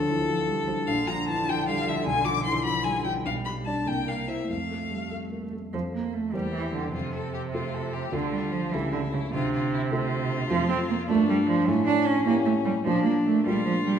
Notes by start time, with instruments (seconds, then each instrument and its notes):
Already playing: grand piano D2 F3, violin A4
0.10 grand piano E3, cello F3
0.29 grand piano F3
0.48 grand piano G3
0.68 cello F3, grand piano F3
0.86 grand piano A#1, cello D3, violin F5
1.07 grand piano F3, violin A#5
1.28 grand piano E3, violin A5
1.49 grand piano F3, violin G5
1.68 grand piano G3, violin F5
1.87 grand piano F3, violin E5
2.07 grand piano B1, violin G#5
2.25 grand piano F3, violin D6
2.45 grand piano E3, violin C6
2.65 grand piano F3, violin B5
2.84 grand piano G3, violin G#5
3.04 grand piano F3, violin G5
3.26 grand piano B1, cello G3, violin F5
3.45 grand piano G3, violin B5
3.65 grand piano D4 D5, violin A5
3.86 grand piano C2, cello A#3, violin G5
4.07 grand piano A#3, violin F5
4.28 grand piano E4 C5, violin E5
4.49 grand piano F2, cello A3, violin F5
4.71 grand piano A3
4.91 grand piano G3
5.11 grand piano A3
5.32 grand piano A#3
5.53 grand piano A3
5.73 grand piano F2 A3 A4 C5, cello F3
5.94 cello A#3
6.14 cello A3
6.33 grand piano E2 A#3 G4 C5, cello G3, violin G4
6.54 cello E3
6.73 cello D3
6.93 grand piano F2, cello C3, violin F4
7.14 violin A4
7.34 violin G4
7.53 grand piano A3 F4 A4, violin F4
7.74 violin A4
7.93 violin G4
8.12 grand piano D2 A3 F4 A4, cello D3, violin F4
8.32 cello G3
8.52 cello F3
8.72 grand piano C#2 A3 G4 A4, cello E3, violin E4
8.92 cello D3
9.13 cello C#3
9.32 grand piano D2, cello C3, violin F4
9.53 violin F4
9.73 violin E4
9.91 grand piano A3 F4 A4, violin F4
10.49 grand piano F2 A3 F4 A4, cello F3
10.69 cello C4
10.89 cello A#3
11.08 grand piano G2 D4 F4 A#4, cello A3, violin D4
11.29 cello G3
11.47 cello F3
11.68 grand piano A2, cello A3, violin C#4
11.86 cello D4
12.06 cello C#4
12.26 cello A#3, grand piano C#4 E4 G4
12.45 cello A3
12.65 cello G3
12.85 grand piano A#2 A#3 D4 F4, cello F3, violin D4
13.04 cello A#3
13.26 cello A3
13.46 grand piano A#2 G#3 D4 F4, cello G3, violin F4
13.66 cello F3
13.86 cello G3